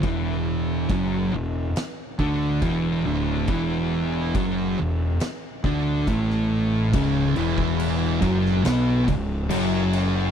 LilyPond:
<<
  \new Staff \with { instrumentName = "Distorted electric guitar" } { \clef bass \time 4/4 \key d \lydian \tempo 4 = 70 <e, e>4 <fis, fis>8 e,8 r8 <d d'>8 <e, e>8 <d, d>8 | <e, e>4 <fis, fis>8 e,8 r8 <d d'>8 <a, a>4 | \key cis \minor <cis, cis>8 <e, e>4 <fis, fis>8 <b, b>8 cis,8 <fis, fis>4 | }
  \new Staff \with { instrumentName = "Distorted electric guitar" } { \clef bass \time 4/4 \key d \lydian <e, e>4 <fis, fis>8 e,8 r8 <d d'>8 <e, e>8 <d, d>8 | <e, e>4 <fis, fis>8 e,8 r8 <d d'>8 <a, a>4 | \key cis \minor <cis, cis>8 <e, e>4 <fis, fis>8 <b, b>8 cis,8 <fis, fis>4 | }
  \new Staff \with { instrumentName = "Overdriven electric guitar" } { \clef bass \time 4/4 \key d \lydian r1 | r1 | \key cis \minor <cis, cis>8 <e, e>4 <fis, fis>8 <b, b>8 cis,8 <fis, fis>4 | }
  \new Staff \with { instrumentName = "Picked electric bass" } { \clef bass \time 4/4 \key d \lydian e,,4 fis,,8 e,,8 r8 d,8 e,,8 d,,8 | e,,4 fis,,8 e,,8 r8 d,8 a,,4 | \key cis \minor cis,,8 e,,4 fis,,8 b,,8 cis,,8 fis,,4 | }
  \new DrumStaff \with { instrumentName = "Drums" } \drummode { \time 4/4 <cymc bd>4 <cymc bd>4 <cymc sn>8 bd8 <cymc bd>4 | <cymc bd>4 <cymc bd>4 <cymc sn>8 bd8 <cymc bd>16 sn8. | <cymc bd>8 cymc16 bd16 cymc8 <cymc bd>16 sn16 <cymc sn>8 <cymc bd>8 cymc8 cymc8 | }
>>